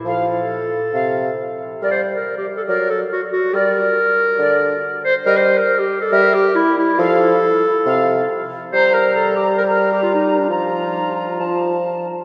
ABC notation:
X:1
M:4/4
L:1/16
Q:1/4=138
K:Gdor
V:1 name="Flute section"
f2 z6 f2 z6 | d2 z6 d2 z6 | d2 z6 d2 z6 | [K:Gm] e2 z6 =e2 z6 |
f2 z6 f2 z6 | b8 b8 | b8 a6 z2 |]
V:2 name="Clarinet"
A16 | B c2 B2 G2 A B2 A2 ^F2 F2 | B12- B2 c2 | [K:Gm] B c2 B2 G2 A B2 G2 =E2 E2 |
A12- A z3 | c2 B2 A2 G2 B B2 G F E2 D | F12- F2 z2 |]
V:3 name="Bassoon" clef=bass
F,4 z4 C,4 z4 | G,4 z4 ^F,4 z4 | G,4 z4 D,4 z4 | [K:Gm] G,4 z4 G,4 z4 |
F,4 z4 C,4 z4 | G,16 | F,8 F,6 z2 |]